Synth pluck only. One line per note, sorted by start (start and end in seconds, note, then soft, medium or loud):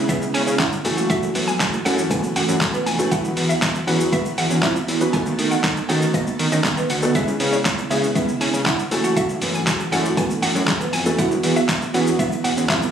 0.09 0.28 E5 medium
0.34 0.43 G#5 medium
0.59 0.95 F#5 medium
1.10 1.28 E5 loud
1.48 1.66 G#5 medium
1.85 1.95 F#5 medium
2.11 2.29 G#5 medium
2.36 2.45 F#5 medium
2.86 2.96 G#5 medium
3.12 3.30 F#5 loud
3.49 3.68 E5 medium
3.87 3.97 F#5 medium
4.13 4.31 E5 loud
4.38 4.47 F#5 medium
4.63 4.99 E5 medium
5.13 5.32 G#5 loud
5.51 5.70 F#5 medium
5.89 5.98 F#5 medium
6.14 6.24 D#5 medium
6.52 6.61 D#5 medium
6.90 6.99 F#5 medium
7.15 7.34 E5 loud
7.53 7.71 C#5 medium
7.90 8.00 E5 medium
8.15 8.34 E5 medium
8.41 8.50 G#5 medium
8.66 9.02 F#5 medium
9.17 9.35 E5 loud
9.54 9.73 G#5 medium
9.92 10.02 F#5 medium
10.17 10.36 G#5 medium
10.42 10.52 F#5 medium
10.93 11.02 G#5 medium
11.18 11.37 F#5 loud
11.56 11.75 E5 medium
11.94 12.03 F#5 medium
12.19 12.38 E5 loud
12.44 12.54 F#5 medium
12.69 12.91 E5 medium